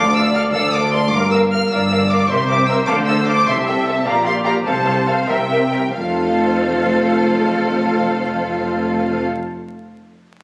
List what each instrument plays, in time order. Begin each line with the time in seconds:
Already playing: cello section D2, double bass section D2, viola section D5, violin section D6
0.15 violin section A4 F5 E6
0.34 violin section A4 F5 F6
0.52 double bass section D2, cello section D2, violin section A4 F5 E6
0.73 violin section A4 F5 D6
0.92 violin section A4 F5 C6
1.12 double bass section G1, cello section G2, viola section A#4, violin section A#4 F5 D6
1.31 violin section A#4 F5 E6
1.51 violin section A#4 F5 F6
1.70 double bass section G1, cello section G2, violin section A#4 F5 E6, viola section D5
1.91 violin section A#4 F5
2.09 violin section A#4 F5 D6
2.29 double bass section C2, cello section C3, violin section A#4 E5 C6, viola section C5
2.48 violin section A#4 E5 D6
2.67 violin section A#4 E5 E6
2.87 double bass section D2, cello section D3, violin section A4 F5 D6
3.07 violin section A4 F5 E6
3.27 violin section A4 F5 D6
3.47 double bass section C2, cello section C3, violin section A4 E5 C6, viola section E5
3.67 violin section A4 E5 G5
3.87 violin section A4 E5 A5
4.06 double bass section A#1, cello section A#2, violin section G4 F5 A#5, viola section D5
4.25 violin section G4 F5 C6
4.45 violin section G4 F5 A#5
4.66 double bass section C2, cello section C3, violin section A4 F5 A5, viola section C5
4.85 violin section A4 F5
5.06 violin section A4 F5
5.27 double bass section C2, cello section C3, violin section A#4 E5 G5, viola section E5
5.49 violin section A#4 E5
5.72 violin section A#4 E5
5.93 double bass section F1, cello section F2, viola section A3 F4, violin section A4 C5 F5